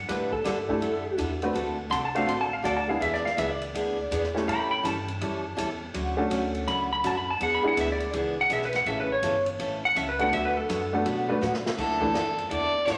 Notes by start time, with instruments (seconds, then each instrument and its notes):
0.09 upright bass A2, steel-string acoustic guitar D3 G3 D4 E4 A4, electric slide guitar B4, snare, ride
0.32 electric slide guitar A4, kick
0.44 upright bass G2, steel-string acoustic guitar D3 G3 D4 E4 A4, electric slide guitar A4, snare, hi-hat pedal, ride
0.69 upright piano A3 D4 E4 G4 A4, kick
0.80 upright bass F#2, steel-string acoustic guitar D3 G3 D4 E4 A4, ride
1.18 upright bass E2, steel-string acoustic guitar D3 G3 D4 E4 A4, hi-hat pedal, ride
1.42 upright piano A3 C4 D4 F#4 B4, ride
1.53 upright bass D2, steel-string acoustic guitar D3 A3 C4 F#4 A4, ride
1.90 upright bass C2, steel-string acoustic guitar D3 A3 C4 F#4 A4, electric slide guitar C6, hi-hat pedal, ride
2.05 electric slide guitar A5
2.15 upright piano A3 C4 D4 F#4 A4, electric slide guitar F5, ride
2.26 upright bass A1, steel-string acoustic guitar D3 A3 C4 F#4 A4, electric slide guitar C6, ride
2.41 electric slide guitar A5
2.53 electric slide guitar F5
2.63 upright bass D2, steel-string acoustic guitar D3 A3 C4 F#4 A4, electric slide guitar D5, hi-hat pedal, ride
2.77 electric slide guitar A5
2.87 upright piano G#3 B3 D4 E4 G#4, electric slide guitar F5
3.00 upright bass E2, steel-string acoustic guitar E3 B3 D4 G#4, electric slide guitar E5, ride
3.14 electric slide guitar D5, snare
3.25 electric slide guitar F5, snare
3.37 upright bass C#2, steel-string acoustic guitar E3 B3 D4 G#4, electric slide guitar E5, hi-hat pedal, ride
3.50 electric slide guitar D5
3.62 ride
3.74 upright bass D2, steel-string acoustic guitar E3 B3 D4 G#4, ride
4.11 upright bass E2, steel-string acoustic guitar E3 B3 D4 G#4, hi-hat pedal, ride
4.24 snare
4.34 upright piano A3 C#4 E4 G4 A4, snare
4.47 upright bass A2, steel-string acoustic guitar E3 G3 C#4 E4 A4, electric slide guitar G5 B5, ride
4.71 electric slide guitar G5 B5
4.83 upright bass G2, steel-string acoustic guitar E3 G3 C#4 E4 A4, electric slide guitar A5, hi-hat pedal, ride
5.08 ride
5.21 upright bass F#2, steel-string acoustic guitar E3 G3 C#4 E4 A4, ride
5.56 upright bass E2, steel-string acoustic guitar E3 G3 C#4 E4 A4, hi-hat pedal, ride
5.94 upright bass D2, steel-string acoustic guitar D3 F#3 A3 C#4 F#4, ride
6.17 upright piano A3 C#4 D4 F#4 A4
6.30 upright bass D2, steel-string acoustic guitar D3 F#3 A3 C#4 F#4, hi-hat pedal, ride
6.55 ride
6.67 upright bass C#2, steel-string acoustic guitar D3 F#3 A3 C#4 F#4, electric slide guitar B5, ride
6.93 electric slide guitar B5
7.03 upright bass F#2, steel-string acoustic guitar D3 F#3 A3 C#4 F#4, electric slide guitar A5, hi-hat pedal, ride
7.17 electric slide guitar B5
7.31 electric slide guitar A5
7.40 upright bass E2, steel-string acoustic guitar E3 B3 D4 G#4, electric slide guitar F#5, ride
7.55 electric slide guitar B5
7.63 upright piano G#3 B3 D4 E4 G#4, muted upright bass stroke
7.68 electric slide guitar F#5
7.76 upright bass D2, steel-string acoustic guitar E3 B3 D4 G#4, hi-hat pedal, ride
7.81 electric slide guitar E5
7.92 electric slide guitar D5
8.00 ride
8.13 upright bass C#2, steel-string acoustic guitar E3 B3 D4 G#4, ride
8.41 electric slide guitar F#5
8.50 upright bass B1, steel-string acoustic guitar E3 B3 D4 G#4, electric slide guitar E5, hi-hat pedal, ride
8.62 electric slide guitar B4, snare
8.73 electric slide guitar F#5, snare, ride
8.86 upright bass A1, steel-string acoustic guitar C#3 E3 A3 C#4 A4, electric slide guitar E5, ride
9.00 electric slide guitar B4
9.12 electric slide guitar C#5
9.22 upright bass G1, steel-string acoustic guitar C#3 E3 A3 C#4 A4, hi-hat pedal, ride
9.46 ride
9.59 upright bass A1, steel-string acoustic guitar C#3 E3 A3 C#4 A4, ride
9.85 electric slide guitar F#5
9.95 upright bass C#2, steel-string acoustic guitar C#3 E3 A3 C#4 A4, electric slide guitar E5, hi-hat pedal, ride
10.09 electric slide guitar B4
10.19 upright piano A3 B3 D4 F#4 A4, electric slide guitar F#5, ride
10.32 upright bass D2, steel-string acoustic guitar D3 F#3 B3 F#4 B4, electric slide guitar E5, ride
10.45 electric slide guitar B4
10.57 electric slide guitar A4
10.69 upright bass F#2, steel-string acoustic guitar D3 F#3 B3 F#4 B4, hi-hat pedal, ride
10.93 upright piano A3 B3 D4 F#4 A4
11.05 upright bass B2, steel-string acoustic guitar D3 F#3 B3 F#4 B4, ride
11.28 upright piano A3 B3 D4 F#4 B4
11.41 upright bass A2, steel-string acoustic guitar D3 F#3 B3 F#4 B4, snare, hi-hat pedal
11.54 snare
11.65 muted upright bass stroke, snare
11.78 upright bass D2, steel-string acoustic guitar D3 A3 D4 E4 A4, fiddle A4, kick, crash
12.00 upright piano E3 A3 D4 E4 A4, kick
12.14 upright bass F#2, steel-string acoustic guitar D3 A3 D4 E4 A4, snare, hi-hat pedal, ride
12.38 ride
12.50 upright bass E2, steel-string acoustic guitar D3 A3 D4 E4 A4, fiddle D5, ride
12.86 upright bass A1, steel-string acoustic guitar D3 A3 D4 E4 A4, fiddle B4, snare, hi-hat pedal, ride